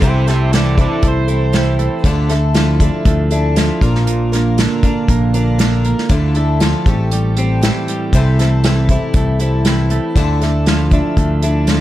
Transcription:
0.02 C2 C3 E3 G3 C4 E4 G4 A4 C5, kick, closed hi-hat
0.27 G3 A3 C4 E4 G4 A4 C5, snare, closed hi-hat
0.52 E3 G3 C4 E4 A4 D5, snare, closed hi-hat
0.77 G3 C4 E4 A4 D5, kick, closed hi-hat
1.03 C2 A3, kick, closed hi-hat
1.08 C5
1.28 G3 C4 E4 A4, closed hi-hat
1.53 E3 G3 C4 E4 A4, snare, closed hi-hat
1.79 A3, closed hi-hat
2.04 D2 D3 F3 A3 D4 E4 A4, kick, closed hi-hat
2.29 A3 D4 E4 A4, snare, closed hi-hat
2.54 F3 A3 D4 E4 A4, snare, closed hi-hat
2.80 A3 D4 E4 A4, kick, closed hi-hat
3.05 D2 A3, kick, closed hi-hat
3.31 A3 D4 E4 A4, closed hi-hat
3.56 F3 A3 D4 E4 A4, snare, closed hi-hat
3.81 A#1 A#2 F3 A#3 D4 F4 A#4, kick, closed hi-hat
3.95 snare
4.07 A#2, closed hi-hat
4.32 A#3 D4 F4 A#4, snare, closed hi-hat
4.58 D3 A#3 D4 F4 A#4, snare, closed hi-hat
4.83 A#3 D4 F4 A#4, kick, closed hi-hat
5.08 A#1 A#3, kick, closed hi-hat
5.34 A#3 D4 F4 A#4, closed hi-hat
5.58 D3 A#3 D4 F4 A#4, snare, closed hi-hat
5.85 A#3, closed hi-hat
5.98 snare
6.09 D2 D3 F3 A3 D4 E4 A4, kick, closed hi-hat
6.35 A3 D4 E4 A4, closed hi-hat
6.60 F3 A3 D4 E4 A4, snare, closed hi-hat
6.86 A1 A2 G3 C4 G4 A4, kick, closed hi-hat
7.11 G3, closed hi-hat
7.37 G3 C4 G4 A4, closed hi-hat
7.61 E3 G3 C4 G4 A4, snare, closed hi-hat
7.88 G3, closed hi-hat
8.13 C2 C3 E3 G3 C4 E4 A4, kick, closed hi-hat
8.39 G3 A3 C4 E4 A4, snare, closed hi-hat
8.64 E3 G3 C4 E4 A4, snare, closed hi-hat
8.89 G3 C4 E4 A4, kick, closed hi-hat
9.14 C2 A3, kick, closed hi-hat
9.39 G3 C4 E4 A4, closed hi-hat
9.65 E3 G3 C4 E4 A4, snare, closed hi-hat
9.90 A3, closed hi-hat
10.15 D2 D3 F3 A3 D4 E4 A4, kick, closed hi-hat
10.41 A3 D4 E4 A4, snare, closed hi-hat
10.66 F3 A3 D4 E4 A4, snare, closed hi-hat
10.91 A3 D4 E4 A4, kick, closed hi-hat
11.17 D2 A3, kick, closed hi-hat
11.42 A3 D4 E4 A4, closed hi-hat
11.67 F3 A3 D4 E4 A4, snare, closed hi-hat

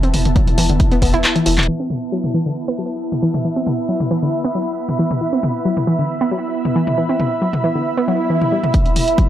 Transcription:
Already playing: B3 E4 E5 A5
0.03 C4, closed hi-hat
0.14 E1, open hi-hat, mid tom
0.25 E1, closed hi-hat, mid tom
0.36 F#3, kick, closed hi-hat
0.47 closed hi-hat, mid tom
0.58 E1 E3, open hi-hat
0.69 E1 D3, closed hi-hat
0.80 kick, closed hi-hat
0.92 B3, closed hi-hat
1.02 E1 B3, kick, open hi-hat
1.14 E1 E4, closed hi-hat
1.24 clap, closed hi-hat
1.36 E3, closed hi-hat
1.46 E1 E3, open hi-hat
1.58 E1, clap, closed hi-hat, mid tom
1.63 closed hi-hat
1.68 E3 B3
1.80 C4
1.90 mid tom
2.12 F#3
2.24 E4, mid tom
2.34 E3
2.46 D3
2.66 B3 E5
2.79 F#3
3.12 mid tom
3.23 E3
3.34 mid tom
3.45 E3
3.50 B5
3.56 C4
3.67 mid tom
3.89 F#3
4.00 mid tom
4.11 E3
4.22 D3
4.44 B3
4.55 F#3
4.89 mid tom
4.99 E3
5.11 mid tom
5.21 E3
5.33 C4
5.43 mid tom
5.65 F#3
5.77 mid tom
5.87 E3
5.99 D3
6.21 B3
6.31 F#3
6.65 mid tom
6.76 E3
6.87 mid tom
6.98 E3
7.09 C4
7.20 mid tom
7.42 F#3
7.53 mid tom
7.64 E3
7.75 D3
7.86 swell
7.97 B3
8.08 F#3
8.30 E3
8.42 mid tom
8.52 G3
8.64 mid tom
8.74 E3, kick, closed hi-hat, riser
8.86 C4, closed hi-hat
8.96 open hi-hat, mid tom
9.08 closed hi-hat
9.18 F#3, kick, closed hi-hat

